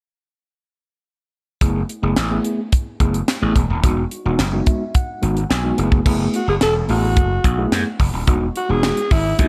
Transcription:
1.61 slap bass F#1, tine electric piano A3 B3 E4 G#4, kick, closed hi-hat
1.89 closed hi-hat
2.02 slap bass F#1, tine electric piano A3 B3 E4 G#4
2.16 slap bass A1, snare, closed hi-hat
2.30 tine electric piano A3 B3 E4 G#4
2.44 closed hi-hat
2.72 kick, closed hi-hat
3.00 slap bass F#1, tine electric piano A3 B3 E4 G#4, kick, closed hi-hat
3.14 closed hi-hat
3.28 snare, closed hi-hat
3.42 slap bass A1, tine electric piano A3 B3 E4 G#4
3.56 slap bass E1, kick, closed hi-hat
3.70 slap bass D#1
3.83 slap bass E1, tine electric piano G#3 B3 D#4 F#4, kick, closed hi-hat
4.11 closed hi-hat
4.25 slap bass E1, tine electric piano G#3 B3 D#4 F#4
4.39 slap bass F#1, snare, closed hi-hat
4.53 tine electric piano G#3 B3 D#4 F#4
4.66 tine electric piano E5, kick, closed hi-hat
4.95 tine electric piano F#5, kick, closed hi-hat
5.22 slap bass G#1, tine electric piano G#3 B3 D#4 F#4, closed hi-hat
5.37 closed hi-hat
5.50 slap bass B1, tine electric piano G#5, snare, closed hi-hat
5.64 tine electric piano G#3 B3 D#4 F#4
5.77 slap bass F#1, tine electric piano A3 B3 E4 G#4, closed hi-hat
5.92 kick
6.05 slap bass F#1, tine electric piano A3 B3 E4 G#4, kick, crash
6.34 alto saxophone F#4, closed hi-hat
6.48 slap bass F#1, alto saxophone G#4
6.61 slap bass E1, alto saxophone A4, snare, closed hi-hat
6.89 slap bass A1, tine electric piano A3 B3 E4 G#4, alto saxophone F#4, open hi-hat
7.17 slap bass F#1, kick, closed hi-hat
7.44 slap bass B1, kick, closed hi-hat
7.58 tine electric piano A3 B3 E4 G#4
7.72 slap bass F#2, snare, closed hi-hat
8.00 slap bass F#1, kick, open hi-hat
8.13 slap bass D#1
8.27 slap bass E1, tine electric piano G#3 B3 D#4 F#4, kick, closed hi-hat
8.56 alto saxophone F#4, closed hi-hat
8.69 slap bass E1, tine electric piano G#3 B3 D#4 F#4, alto saxophone G#4
8.83 snare, closed hi-hat
8.97 closed hi-hat
9.11 slap bass G#1, alto saxophone E4, kick, open hi-hat
9.38 slap bass D#2, tine electric piano G#3 B3 D#4 F#4, alto saxophone D#4, kick, closed hi-hat

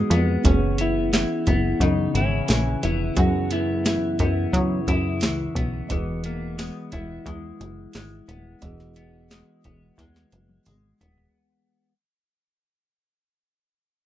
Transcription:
Already playing: clean electric guitar E3 G#3 B3 D#4, tine electric piano B3 D#4 F#4 G#4
0.10 analog synth bass F2, clean electric guitar B3, closed hi-hat
0.42 analog synth bass F#1, tine electric piano E3 B3 C#4, kick, closed hi-hat
0.47 electric slide guitar C#4, tine electric piano G#4
0.78 clean electric guitar B3, electric slide guitar E4, closed hi-hat
1.13 clean electric guitar E3, electric slide guitar E4, snare, closed hi-hat, tambourine
1.47 analog synth bass F#1, clean electric guitar B3, kick, closed hi-hat
1.80 analog synth bass F#2, clean electric guitar C#3, electric slide guitar D#4, kick, closed hi-hat
2.15 analog synth bass G#1, electric slide guitar C#4, clean electric guitar E4, closed hi-hat
2.48 analog synth bass A#1, clean electric guitar E3, snare, closed hi-hat, tambourine
2.83 analog synth bass F1, clean electric guitar B3, electric slide guitar E4, closed hi-hat
3.15 analog synth bass F#2, clean electric guitar F#2, tine electric piano B3 C#4 E4, kick, closed hi-hat
3.19 electric slide guitar F#4, tine electric piano G#4
3.51 clean electric guitar B3, electric slide guitar E4, closed hi-hat
3.86 clean electric guitar E3, electric slide guitar E4, snare, closed hi-hat, tambourine
4.19 analog synth bass F#2, clean electric guitar B3, electric slide guitar E4, kick, closed hi-hat
4.53 clean electric guitar C#3, analog synth bass F#3, kick, closed hi-hat
4.88 analog synth bass F#2, clean electric guitar E4, kick, closed hi-hat
5.21 analog synth bass C#2, clean electric guitar E3, snare, closed hi-hat, tambourine
5.55 analog synth bass B1, clean electric guitar B3, kick, closed hi-hat
5.87 analog synth bass E1, clean electric guitar E3, tine electric piano G#3 F#4 D#5, kick, closed hi-hat
5.92 electric slide guitar B3, tine electric piano G#4
6.24 electric slide guitar A#3, clean electric guitar B3, closed hi-hat
6.58 clean electric guitar G#3, electric slide guitar B3, snare, closed hi-hat, tambourine
6.92 analog synth bass E1, clean electric guitar B3, electric slide guitar E4, kick, closed hi-hat
7.26 analog synth bass E2, clean electric guitar G#3, kick, closed hi-hat
7.61 analog synth bass F#1, closed hi-hat
7.93 analog synth bass G#1, clean electric guitar G#3, snare, closed hi-hat, tambourine
8.28 analog synth bass D#1, clean electric guitar B3, closed hi-hat
8.60 analog synth bass E1, clean electric guitar E3, tine electric piano B3 F#4 D#5, kick, closed hi-hat
8.65 tine electric piano G#4
8.80 snare
8.96 clean electric guitar B3, closed hi-hat
9.30 clean electric guitar G#3, snare, closed hi-hat, tambourine
9.64 analog synth bass E1, clean electric guitar B3, kick, closed hi-hat
9.98 analog synth bass E2, clean electric guitar G#3, kick, snare, closed hi-hat
10.16 snare
10.32 analog synth bass F#1, closed hi-hat
10.49 high tom
10.65 analog synth bass G#1, clean electric guitar G#3, closed hi-hat, mid tom, tambourine
11.01 analog synth bass D#1, clean electric guitar B3, closed hi-hat, floor tom
11.18 floor tom

